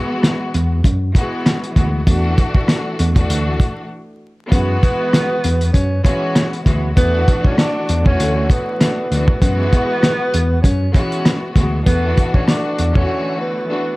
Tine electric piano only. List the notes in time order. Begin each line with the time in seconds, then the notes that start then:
0.55 E2
0.85 F#2
1.76 D2
2.07 E2
2.99 E2
3.30 D2
4.52 F#2
5.44 E2
5.75 F#2
6.66 D2
6.97 E2
7.89 E2
8.20 D2
9.12 D2
9.42 F#2
10.34 E2
10.64 F#2
11.56 D2
11.87 E2
12.79 E2